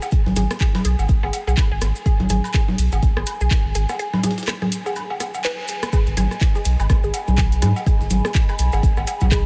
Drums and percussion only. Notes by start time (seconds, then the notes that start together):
0.02 snare, low woodblock, maracas
0.11 kick, closed hi-hat, maracas
0.26 snare, low conga
0.36 snare, closed hi-hat, low conga, maracas
0.51 cross-stick, snare, closed hi-hat, maracas
0.60 kick, snare, clap, closed hi-hat, maracas
0.75 snare, closed hi-hat, low conga, high woodblock
0.84 closed hi-hat, maracas
0.99 low woodblock, maracas
1.09 kick, closed hi-hat, maracas
1.23 cross-stick, low woodblock
1.33 closed hi-hat, low woodblock, maracas
1.47 closed hi-hat, low woodblock, maracas
1.57 kick, snare, clap, closed hi-hat, high woodblock, maracas
1.81 cross-stick, closed hi-hat, maracas
1.96 maracas
2.06 kick, closed hi-hat, maracas
2.20 closed hi-hat, low conga
2.29 closed hi-hat, low conga, maracas
2.44 closed hi-hat, high woodblock, maracas
2.54 kick, cross-stick, snare, clap, closed hi-hat, maracas
2.68 snare, low conga
2.78 closed hi-hat, open hi-hat, maracas
2.92 closed hi-hat, low woodblock, maracas
3.03 kick, closed hi-hat, maracas
3.17 cross-stick
3.26 closed hi-hat, high woodblock, maracas
3.41 maracas
3.51 kick, snare, clap, closed hi-hat, maracas
3.75 closed hi-hat, maracas
3.89 cross-stick, snare, low woodblock, maracas
3.99 closed hi-hat, maracas
4.13 snare, low conga, high woodblock
4.23 snare, closed hi-hat, low conga, maracas
4.31 snare, closed hi-hat
4.38 snare, closed hi-hat, maracas
4.43 snare, closed hi-hat
4.48 cross-stick, snare, clap, closed hi-hat, maracas
4.62 closed hi-hat, low conga
4.72 closed hi-hat, maracas
4.86 low woodblock, maracas
4.96 closed hi-hat, high woodblock, maracas
5.10 low woodblock
5.20 cross-stick, closed hi-hat, low woodblock, maracas
5.34 closed hi-hat, low woodblock, maracas
5.44 snare, clap, closed hi-hat, maracas
5.68 closed hi-hat, maracas
5.83 cross-stick, closed hi-hat, high woodblock, maracas
5.93 kick, closed hi-hat, high woodblock, maracas
6.06 closed hi-hat, maracas
6.17 closed hi-hat, low conga, maracas
6.31 cross-stick, closed hi-hat, maracas
6.41 kick, snare, clap, closed hi-hat, maracas
6.55 snare, maracas
6.65 closed hi-hat, open hi-hat, maracas
6.80 closed hi-hat, high woodblock, maracas
6.90 kick, cross-stick, closed hi-hat, maracas
7.04 maracas
7.14 closed hi-hat, low woodblock, maracas
7.28 low conga, maracas
7.38 kick, snare, clap, closed hi-hat, maracas
7.52 closed hi-hat, maracas
7.62 cross-stick, closed hi-hat, low conga, high woodblock, maracas
7.76 snare, low woodblock, maracas
7.86 kick, closed hi-hat, maracas
8.01 snare, maracas
8.10 closed hi-hat, low conga, maracas
8.25 cross-stick, snare, maracas
8.35 kick, snare, clap, closed hi-hat, maracas
8.49 closed hi-hat, high woodblock, maracas
8.59 closed hi-hat, maracas
8.72 low woodblock, maracas
8.83 kick, closed hi-hat, maracas
8.97 cross-stick, low woodblock, maracas
9.07 closed hi-hat, low woodblock, maracas
9.21 kick, closed hi-hat, low conga, low woodblock, maracas
9.31 kick, snare, clap, closed hi-hat, high woodblock, maracas